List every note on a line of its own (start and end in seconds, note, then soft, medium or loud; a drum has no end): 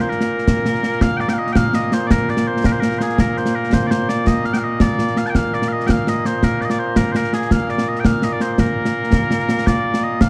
0.00 10.29 A#2 medium
0.00 10.29 A#3 medium
0.00 0.09 C5 medium
0.09 1.02 A#4 medium
0.09 snare soft
0.21 snare medium
0.39 snare soft
0.48 concert bass drum medium
0.48 snare loud
0.66 snare medium
0.75 snare soft
0.83 snare medium
0.92 snare soft
1.01 1.17 F5 loud
1.01 concert bass drum medium
1.01 snare medium
1.17 1.29 D5 loud
1.17 1.20 G5 loud
1.17 snare soft
1.29 1.33 G5 medium
1.29 snare medium
1.33 1.38 F5 medium
1.38 1.52 D#5 loud
1.47 snare soft
1.52 1.75 F5 loud
1.52 1.56 G5 loud
1.52 concert bass drum medium
1.52 snare loud
1.74 1.93 D#5 loud
1.74 snare medium
1.92 2.07 C5 medium
1.92 snare medium
2.07 2.30 A#4 loud
2.07 2.11 D5 loud
2.07 concert bass drum medium
2.07 snare loud
2.28 2.47 D5 medium
2.28 snare soft
2.37 snare medium
2.47 2.65 C5 medium
2.64 2.72 A#4 loud
2.64 concert bass drum medium
2.64 snare loud
2.72 2.80 C5 medium
2.80 2.98 A#4 medium
2.80 snare medium
2.92 snare soft
2.98 3.20 G#4 medium
2.98 3.02 C5 medium
2.98 snare medium
3.10 snare soft
3.18 3.37 A#4 loud
3.18 concert bass drum medium
3.18 snare medium
3.37 3.55 C5 medium
3.37 snare soft
3.46 snare medium
3.55 3.73 A#4 medium
3.64 snare soft
3.73 3.87 C5 medium
3.73 concert bass drum medium
3.73 snare loud
3.87 4.09 C5 medium
3.87 3.91 D5 medium
3.91 snare medium
4.09 4.27 D5 medium
4.09 snare medium
4.27 4.45 D#5 loud
4.27 concert bass drum medium
4.27 snare medium
4.45 4.53 F5 loud
4.45 snare soft
4.53 4.58 G5 medium
4.53 snare medium
4.58 4.64 F5 medium
4.64 4.81 D#5 medium
4.80 5.17 D5 loud
4.80 concert bass drum medium
4.80 snare loud
4.99 snare medium
5.17 5.26 F5 medium
5.17 snare medium
5.26 5.30 A5 medium
5.26 snare soft
5.30 5.35 G5 medium
5.35 5.54 F5 loud
5.35 concert bass drum medium
5.35 snare medium
5.53 5.68 D5 medium
5.53 snare soft
5.62 snare medium
5.68 5.72 F5 medium
5.72 5.87 D#5 medium
5.80 snare soft
5.87 6.09 F5 medium
5.87 5.90 G5 medium
5.87 concert bass drum medium
5.87 snare loud
6.07 6.26 D#5 loud
6.07 snare medium
6.25 6.44 C5 medium
6.25 snare medium
6.43 6.61 A#4 medium
6.43 concert bass drum soft
6.43 snare medium
6.61 6.65 D5 medium
6.61 6.70 D#5 medium
6.61 snare soft
6.70 6.79 D5 medium
6.70 snare medium
6.79 6.96 C5 medium
6.96 7.12 A#4 medium
6.96 concert bass drum medium
6.96 snare loud
7.12 7.16 C5 medium
7.12 snare medium
7.16 7.33 A#4 medium
7.24 snare soft
7.33 7.52 G#4 medium
7.33 snare medium
7.42 snare soft
7.51 7.70 F5 loud
7.51 concert bass drum medium
7.51 snare medium
7.69 7.88 D5 medium
7.69 snare soft
7.78 snare medium
7.88 8.00 D#5 medium
7.96 8.05 G5 medium
7.96 snare soft
8.05 8.24 F5 loud
8.05 concert bass drum medium
8.05 snare loud
8.22 8.32 D#5 medium
8.22 snare medium
8.32 8.42 D5 medium
8.40 8.52 C5 medium
8.40 snare medium
8.52 8.59 C5 medium
8.58 9.67 A#4 medium
8.58 concert bass drum medium
8.58 snare medium
8.85 snare medium
9.04 snare soft
9.13 concert bass drum medium
9.13 snare loud
9.31 snare medium
9.39 snare soft
9.49 snare medium
9.58 snare soft
9.67 10.03 D5 loud
9.67 concert bass drum medium
9.67 snare medium
9.94 snare medium
10.03 10.21 D#5 loud
10.21 10.29 F5 loud
10.21 concert bass drum medium
10.21 snare loud